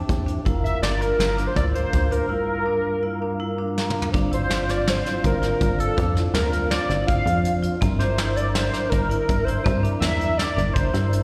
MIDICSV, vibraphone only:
0, 0, Header, 1, 2, 480
1, 0, Start_track
1, 0, Tempo, 367872
1, 596, Time_signature, 5, 2, 24, 8
1, 14654, End_track
2, 0, Start_track
2, 0, Title_t, "Vibraphone"
2, 0, Program_c, 0, 11
2, 0, Note_on_c, 0, 62, 71
2, 268, Note_off_c, 0, 62, 0
2, 346, Note_on_c, 0, 62, 73
2, 547, Note_off_c, 0, 62, 0
2, 591, Note_on_c, 0, 64, 81
2, 987, Note_off_c, 0, 64, 0
2, 1076, Note_on_c, 0, 62, 65
2, 1470, Note_off_c, 0, 62, 0
2, 1554, Note_on_c, 0, 64, 63
2, 1753, Note_off_c, 0, 64, 0
2, 1789, Note_on_c, 0, 62, 65
2, 1990, Note_off_c, 0, 62, 0
2, 2036, Note_on_c, 0, 64, 76
2, 2234, Note_off_c, 0, 64, 0
2, 2275, Note_on_c, 0, 62, 61
2, 2670, Note_off_c, 0, 62, 0
2, 2755, Note_on_c, 0, 62, 71
2, 2953, Note_off_c, 0, 62, 0
2, 2989, Note_on_c, 0, 64, 74
2, 3387, Note_off_c, 0, 64, 0
2, 3470, Note_on_c, 0, 62, 69
2, 3867, Note_off_c, 0, 62, 0
2, 3953, Note_on_c, 0, 64, 64
2, 4152, Note_off_c, 0, 64, 0
2, 4201, Note_on_c, 0, 62, 60
2, 4397, Note_off_c, 0, 62, 0
2, 4436, Note_on_c, 0, 64, 72
2, 4633, Note_off_c, 0, 64, 0
2, 4677, Note_on_c, 0, 62, 67
2, 5071, Note_off_c, 0, 62, 0
2, 5154, Note_on_c, 0, 62, 64
2, 5353, Note_off_c, 0, 62, 0
2, 5395, Note_on_c, 0, 62, 80
2, 5593, Note_off_c, 0, 62, 0
2, 5628, Note_on_c, 0, 64, 68
2, 5829, Note_off_c, 0, 64, 0
2, 5869, Note_on_c, 0, 65, 70
2, 6070, Note_off_c, 0, 65, 0
2, 6115, Note_on_c, 0, 65, 73
2, 6510, Note_off_c, 0, 65, 0
2, 6594, Note_on_c, 0, 64, 63
2, 6989, Note_off_c, 0, 64, 0
2, 7071, Note_on_c, 0, 65, 68
2, 7468, Note_off_c, 0, 65, 0
2, 7552, Note_on_c, 0, 65, 72
2, 7751, Note_off_c, 0, 65, 0
2, 7790, Note_on_c, 0, 62, 80
2, 7990, Note_off_c, 0, 62, 0
2, 8031, Note_on_c, 0, 64, 70
2, 8230, Note_off_c, 0, 64, 0
2, 8272, Note_on_c, 0, 65, 72
2, 8471, Note_off_c, 0, 65, 0
2, 8515, Note_on_c, 0, 65, 71
2, 8909, Note_off_c, 0, 65, 0
2, 8998, Note_on_c, 0, 64, 64
2, 9391, Note_off_c, 0, 64, 0
2, 9468, Note_on_c, 0, 65, 72
2, 9865, Note_off_c, 0, 65, 0
2, 9949, Note_on_c, 0, 65, 77
2, 10148, Note_off_c, 0, 65, 0
2, 10190, Note_on_c, 0, 60, 81
2, 10389, Note_off_c, 0, 60, 0
2, 10433, Note_on_c, 0, 62, 73
2, 10630, Note_off_c, 0, 62, 0
2, 10675, Note_on_c, 0, 64, 70
2, 10872, Note_off_c, 0, 64, 0
2, 10915, Note_on_c, 0, 64, 74
2, 11308, Note_off_c, 0, 64, 0
2, 11397, Note_on_c, 0, 62, 72
2, 11790, Note_off_c, 0, 62, 0
2, 11869, Note_on_c, 0, 64, 70
2, 12265, Note_off_c, 0, 64, 0
2, 12353, Note_on_c, 0, 64, 80
2, 12550, Note_off_c, 0, 64, 0
2, 12583, Note_on_c, 0, 60, 80
2, 12784, Note_off_c, 0, 60, 0
2, 12829, Note_on_c, 0, 62, 70
2, 13028, Note_off_c, 0, 62, 0
2, 13066, Note_on_c, 0, 64, 70
2, 13266, Note_off_c, 0, 64, 0
2, 13305, Note_on_c, 0, 64, 71
2, 13702, Note_off_c, 0, 64, 0
2, 13786, Note_on_c, 0, 62, 66
2, 14183, Note_off_c, 0, 62, 0
2, 14269, Note_on_c, 0, 64, 68
2, 14654, Note_off_c, 0, 64, 0
2, 14654, End_track
0, 0, End_of_file